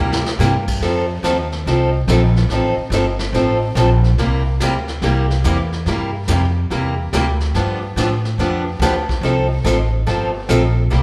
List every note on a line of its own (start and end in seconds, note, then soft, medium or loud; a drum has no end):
0.00 0.38 D2 medium
0.00 0.21 C3 medium
0.00 0.21 G3 medium
0.00 0.21 A#3 medium
0.00 0.21 E4 medium
0.00 0.21 G4 medium
0.12 snare medium
0.26 snare medium
0.39 0.80 G2 loud
0.39 0.52 C3 medium
0.39 0.52 G3 medium
0.39 0.52 A#3 medium
0.39 0.52 E4 medium
0.39 0.52 G4 medium
0.39 snare medium
0.39 hi-hat pedal medium
0.68 kick medium
0.68 crash medium
0.81 1.22 F2 medium
0.81 1.05 F3 medium
0.81 1.05 C4 medium
0.81 1.05 D#4 medium
0.81 1.05 A4 medium
0.81 brush sweep soft
0.81 snare soft
1.23 1.64 D#2 medium
1.23 1.36 F3 medium
1.23 1.36 C4 medium
1.23 1.36 D#4 medium
1.23 1.36 A4 medium
1.23 snare medium
1.23 hi-hat pedal soft
1.52 snare soft
1.66 2.07 C2 medium
1.66 1.89 F3 medium
1.66 1.89 C4 medium
1.66 1.89 D#4 medium
1.66 1.89 A4 medium
1.66 brush sweep medium
1.66 snare soft
2.08 2.48 A#1 loud
2.08 2.21 F3 medium
2.08 2.21 C4 medium
2.08 2.21 D#4 medium
2.08 2.21 A4 medium
2.08 snare medium
2.08 hi-hat pedal medium
2.36 snare soft
2.49 2.75 A1 medium
2.49 2.73 F3 medium
2.49 2.74 C4 medium
2.49 2.74 D#4 medium
2.49 brush sweep medium
2.49 snare soft
2.53 2.74 A4 medium
2.77 muted upright bass stroke soft
2.90 3.32 G1 medium
2.90 3.05 F3 medium
2.90 3.05 C4 medium
2.90 3.05 D#4 medium
2.90 3.05 A4 medium
2.90 snare medium
2.90 hi-hat pedal medium
3.19 snare medium
3.33 3.74 A1 medium
3.33 3.57 F3 medium
3.33 3.57 C4 medium
3.33 3.57 D#4 medium
3.33 3.57 A4 medium
3.33 brush sweep medium
3.33 snare soft
3.75 4.16 A#1 loud
3.75 3.89 F3 medium
3.75 3.89 C4 medium
3.75 3.89 D#4 medium
3.75 3.89 A4 medium
3.75 snare medium
3.75 hi-hat pedal medium
4.04 snare soft
4.18 4.59 C2 medium
4.18 4.41 C3 medium
4.18 4.41 G3 medium
4.18 4.41 A#3 medium
4.18 4.42 E4 medium
4.18 4.42 G4 medium
4.18 brush sweep soft
4.18 snare soft
4.60 5.01 D2 medium
4.60 4.73 C3 medium
4.60 4.73 G3 medium
4.60 4.73 A#3 medium
4.60 4.73 E4 medium
4.60 4.73 G4 medium
4.60 snare medium
4.60 hi-hat pedal medium
4.88 snare soft
5.02 5.43 C2 medium
5.02 5.25 C3 medium
5.02 5.26 G3 medium
5.02 5.26 A#3 medium
5.02 5.25 E4 medium
5.02 5.26 G4 medium
5.02 brush sweep medium
5.02 snare medium
5.30 snare soft
5.44 5.85 E2 loud
5.44 5.57 C3 medium
5.44 5.57 G3 medium
5.44 5.57 A#3 medium
5.44 5.57 E4 medium
5.44 5.57 G4 medium
5.44 snare medium
5.44 hi-hat pedal medium
5.72 snare soft
5.86 6.27 G2 medium
5.86 6.10 C3 medium
5.86 6.10 G3 medium
5.86 6.10 A#3 medium
5.86 6.10 E4 medium
5.86 6.10 G4 medium
5.86 brush sweep medium
5.86 snare soft
6.28 6.69 F2 medium
6.28 6.41 C3 medium
6.28 6.41 G3 medium
6.28 6.41 A#3 medium
6.28 6.41 E4 medium
6.28 6.41 G4 medium
6.28 snare medium
6.28 hi-hat pedal medium
6.70 7.11 E2 medium
6.70 6.94 C3 medium
6.70 6.94 G3 medium
6.70 6.94 A#3 medium
6.70 6.94 E4 medium
6.70 6.94 G4 medium
6.70 brush sweep soft
6.70 snare soft
7.13 7.54 D2 loud
7.13 7.25 C3 medium
7.13 7.25 G3 medium
7.13 7.25 A#3 medium
7.13 7.26 E4 medium
7.13 7.26 G4 medium
7.13 snare medium
7.13 hi-hat pedal medium
7.40 snare soft
7.54 7.95 G2 medium
7.54 7.78 D3 medium
7.54 7.78 F3 medium
7.54 7.78 B3 medium
7.54 7.78 D4 medium
7.54 7.78 G4 medium
7.54 brush sweep soft
7.54 snare soft
7.96 8.37 A2 medium
7.96 8.09 D3 medium
7.96 8.09 F3 medium
7.96 8.09 B3 medium
7.96 8.09 D4 medium
7.96 8.10 G4 medium
7.96 snare medium
7.96 hi-hat pedal medium
8.25 snare soft
8.38 8.79 F2 medium
8.38 8.62 D3 medium
8.38 8.62 F3 medium
8.38 8.62 B3 medium
8.38 8.62 D4 medium
8.38 8.62 G4 medium
8.38 brush sweep medium
8.38 snare soft
8.80 9.21 D2 loud
8.80 8.93 D3 medium
8.80 8.93 F3 medium
8.80 8.94 B3 medium
8.80 8.94 D4 medium
8.80 8.94 G4 medium
8.80 snare medium
8.80 hi-hat pedal medium
9.09 kick medium
9.09 snare soft
9.21 9.63 C2 medium
9.21 9.46 F3 medium
9.21 9.46 C4 medium
9.21 9.46 D#4 medium
9.21 9.46 A4 medium
9.21 brush sweep medium
9.21 snare soft
9.64 10.06 A1 loud
9.64 9.77 F3 medium
9.64 9.77 C4 medium
9.64 9.77 D#4 medium
9.64 9.77 A4 medium
9.64 snare medium
9.64 hi-hat pedal medium
10.07 10.48 G1 medium
10.07 10.30 F3 medium
10.07 10.30 C4 medium
10.07 10.30 D#4 medium
10.07 10.30 A4 medium
10.07 brush sweep medium
10.07 snare medium
10.49 10.90 A#1 loud
10.49 10.61 F3 medium
10.49 10.61 C4 medium
10.49 10.62 D#4 medium
10.49 10.62 A4 medium
10.49 snare medium
10.49 hi-hat pedal medium
10.90 11.03 C2 medium
10.90 11.03 C3 medium
10.90 11.03 G3 medium
10.90 11.03 A#3 medium
10.90 11.03 E4 medium
10.90 11.03 G4 medium
10.90 brush sweep soft
10.90 snare soft